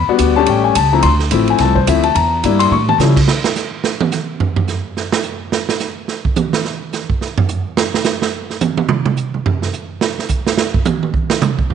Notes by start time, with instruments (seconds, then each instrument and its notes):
Already playing: grand piano B5
0.08 grand piano G3 B3 D4 F#4, muted upright bass stroke
0.19 upright bass D2, kick, hi-hat pedal, ride
0.36 grand piano G3 A3 C#4 G4 A5
0.46 upright bass A1, grand piano G5, kick, ride
0.64 grand piano G#5
0.75 upright bass C#2, grand piano A5, kick, hi-hat pedal, ride
0.93 grand piano F3 A3 C4 E4 A#5
1.03 upright bass D2, grand piano C6, kick, ride
1.19 snare
1.31 upright bass A1, grand piano F3 A3 C4 E4, kick, hi-hat pedal, ride
1.48 grand piano G#5, ride
1.58 upright bass C2, grand piano A5, kick, snare, ride
1.75 grand piano C5, kick
1.87 upright bass D2, grand piano F3 A3 C4 E4 E5, kick, hi-hat pedal, ride
2.03 grand piano A5, ride
2.15 upright bass E2, grand piano A#5, kick, ride
2.44 upright bass G2, grand piano G3 A#3 D4 E4, kick, hi-hat pedal, ride
2.59 grand piano C6, ride
2.67 upright bass A2, grand piano C6
2.72 grand piano C#6, high tom
2.89 grand piano A5, high tom
2.98 upright bass C#3, grand piano F3 G3 C#4 E4, snare, hi-hat pedal
3.17 kick, crash
3.28 snare
3.44 snare
3.56 snare, hi-hat pedal
3.84 snare
4.01 high tom
4.12 snare, hi-hat pedal
4.40 floor tom
4.56 floor tom
4.68 snare, hi-hat pedal
4.97 snare
5.12 snare
5.23 hi-hat pedal
5.52 snare
5.69 snare
5.80 snare, hi-hat pedal
6.08 snare
6.25 kick
6.36 hi-hat pedal, high tom
6.53 snare
6.65 snare
6.93 snare, hi-hat pedal
7.10 kick
7.21 snare
7.38 floor tom
7.49 hi-hat pedal
7.77 snare
7.94 snare
8.04 snare, hi-hat pedal
8.22 snare
8.50 snare
8.61 hi-hat pedal, high tom
8.77 high tom
8.89 mid tom
9.06 mid tom
9.17 hi-hat pedal
9.34 mid tom
9.46 floor tom
9.62 snare
9.73 hi-hat pedal
10.01 snare
10.19 snare
10.29 kick, hi-hat pedal
10.47 snare
10.58 snare
10.74 kick
10.85 hi-hat pedal, high tom
11.03 high tom
11.14 kick
11.30 snare
11.41 hi-hat pedal, mid tom
11.59 kick
11.70 floor tom